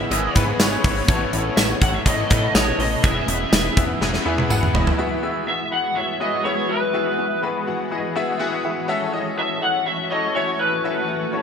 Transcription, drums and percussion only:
0.11 closed hi-hat
0.36 kick, closed hi-hat
0.60 snare, closed hi-hat, tambourine
0.84 kick, open hi-hat
1.08 kick, closed hi-hat
1.33 closed hi-hat
1.57 snare, closed hi-hat, tambourine
1.81 kick, closed hi-hat
2.06 kick, closed hi-hat
2.30 kick, closed hi-hat
2.55 snare, closed hi-hat, tambourine
2.80 open hi-hat
3.04 kick, closed hi-hat
3.28 closed hi-hat
3.53 snare, closed hi-hat, tambourine
3.77 kick, closed hi-hat
4.02 snare
4.14 snare
4.38 high tom
4.50 mid tom, tambourine
4.63 mid tom
4.75 floor tom
4.87 floor tom

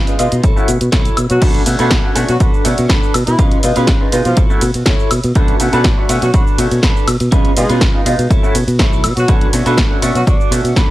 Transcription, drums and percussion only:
0.07 closed hi-hat, shaker
0.19 open hi-hat, shaker
0.32 closed hi-hat, shaker
0.43 kick, closed hi-hat, shaker
0.57 shaker
0.68 open hi-hat, shaker
0.81 closed hi-hat, shaker
0.92 kick, snare, closed hi-hat, shaker
1.05 closed hi-hat, shaker
1.17 open hi-hat, high woodblock, shaker
1.30 closed hi-hat, shaker
1.42 kick, closed hi-hat, crash, shaker
1.54 closed hi-hat
1.66 open hi-hat, ride, shaker
1.79 closed hi-hat, shaker
1.91 kick, snare, closed hi-hat, shaker
2.16 open hi-hat, ride, shaker
2.29 closed hi-hat, shaker
2.40 kick, closed hi-hat, shaker
2.54 shaker
2.65 open hi-hat, ride, shaker
2.78 closed hi-hat, shaker
2.89 kick, snare, closed hi-hat, shaker
3.03 shaker
3.14 open hi-hat, ride, high woodblock, shaker
3.27 closed hi-hat, shaker
3.39 kick, closed hi-hat, shaker
3.52 closed hi-hat
3.63 open hi-hat, ride, shaker
3.76 closed hi-hat, shaker
3.87 kick, snare, closed hi-hat, shaker
4.12 open hi-hat, ride, shaker
4.25 closed hi-hat, shaker
4.37 kick, closed hi-hat, shaker
4.50 shaker
4.61 open hi-hat, ride, shaker
4.74 closed hi-hat, shaker
4.86 kick, snare, closed hi-hat, shaker
4.99 shaker
5.11 open hi-hat, ride, high woodblock, shaker
5.24 closed hi-hat, shaker
5.35 kick, closed hi-hat, shaker
5.48 closed hi-hat
5.60 open hi-hat, ride, shaker
5.73 closed hi-hat, shaker
5.84 kick, snare, closed hi-hat, shaker
6.09 open hi-hat, ride, shaker
6.22 closed hi-hat, shaker
6.34 kick, closed hi-hat, shaker
6.47 shaker
6.59 open hi-hat, ride, shaker
6.72 closed hi-hat, shaker
6.83 kick, snare, closed hi-hat, shaker
6.97 shaker
7.08 open hi-hat, ride, high woodblock, shaker
7.20 closed hi-hat, shaker
7.32 kick, closed hi-hat, shaker
7.45 closed hi-hat
7.57 open hi-hat, ride, shaker
7.70 closed hi-hat, shaker
7.81 kick, snare, closed hi-hat, shaker
8.06 open hi-hat, ride, shaker
8.19 closed hi-hat, shaker
8.30 kick, closed hi-hat, shaker
8.44 shaker
8.55 open hi-hat, ride, shaker
8.68 closed hi-hat, shaker
8.79 kick, snare, closed hi-hat, shaker
8.93 shaker
9.04 open hi-hat, ride, high woodblock, shaker
9.17 closed hi-hat, shaker
9.28 kick, closed hi-hat, shaker
9.41 closed hi-hat
9.53 open hi-hat, ride, shaker
9.66 closed hi-hat, shaker
9.77 kick, snare, closed hi-hat, shaker
10.02 open hi-hat, ride, shaker
10.15 closed hi-hat, shaker
10.27 kick, closed hi-hat, shaker
10.41 shaker
10.52 open hi-hat, ride, shaker
10.65 closed hi-hat, shaker
10.76 kick, snare, closed hi-hat, shaker

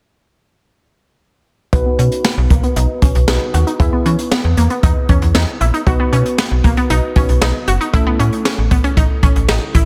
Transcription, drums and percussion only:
1.73 kick, closed hi-hat
1.99 closed hi-hat
2.12 closed hi-hat
2.25 snare
2.50 kick, closed hi-hat
2.63 closed hi-hat
2.76 closed hi-hat
3.02 kick, closed hi-hat
3.15 closed hi-hat
3.28 snare
3.54 closed hi-hat
3.67 closed hi-hat
3.80 kick, closed hi-hat
4.06 closed hi-hat
4.19 closed hi-hat
4.31 snare
4.57 closed hi-hat
4.70 closed hi-hat
4.83 kick, closed hi-hat
5.09 kick, closed hi-hat
5.22 closed hi-hat
5.35 snare
5.61 closed hi-hat
5.74 closed hi-hat
5.87 kick, closed hi-hat
6.13 closed hi-hat
6.25 closed hi-hat
6.38 snare
6.64 kick, closed hi-hat
6.77 closed hi-hat
6.90 closed hi-hat
7.16 kick, closed hi-hat
7.29 closed hi-hat
7.41 snare
7.68 closed hi-hat
7.81 closed hi-hat
7.94 kick, closed hi-hat
8.20 closed hi-hat
8.32 closed hi-hat
8.45 snare
8.71 kick, closed hi-hat
8.84 closed hi-hat
8.97 kick, closed hi-hat
9.23 kick, closed hi-hat
9.36 closed hi-hat
9.48 snare
9.75 kick, closed hi-hat

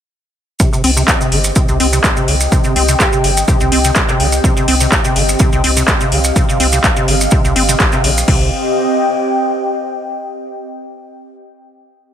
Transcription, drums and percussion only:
0.60 kick, maracas
0.73 maracas
0.84 open hi-hat
0.97 maracas
1.08 kick, clap, maracas
1.21 maracas
1.32 open hi-hat
1.44 maracas
1.56 kick, maracas
1.68 maracas
1.80 open hi-hat
1.93 maracas
2.04 kick, clap, maracas
2.16 maracas
2.28 open hi-hat
2.40 maracas
2.52 kick, maracas
2.64 maracas
2.76 open hi-hat
2.88 maracas
3.00 kick, clap, maracas
3.12 maracas
3.24 open hi-hat
3.37 maracas
3.48 kick, maracas
3.60 maracas
3.72 open hi-hat
3.84 maracas
3.95 kick, clap, maracas
4.09 clap, maracas
4.20 open hi-hat
4.32 maracas
4.44 kick, maracas
4.57 maracas
4.68 open hi-hat
4.80 maracas
4.92 kick, clap, maracas
5.04 maracas
5.16 open hi-hat
5.29 maracas
5.39 kick, maracas
5.52 maracas
5.64 open hi-hat
5.77 maracas
5.88 kick, clap, maracas
6.00 maracas
6.12 open hi-hat
6.24 maracas
6.36 kick, maracas
6.49 maracas
6.60 open hi-hat
6.72 maracas
6.84 kick, clap, maracas
6.96 maracas
7.08 open hi-hat
7.21 maracas
7.31 kick, maracas
7.45 maracas
7.56 open hi-hat
7.69 maracas
7.80 kick, clap, maracas
7.92 clap, maracas
8.04 open hi-hat
8.18 maracas
8.28 kick, crash

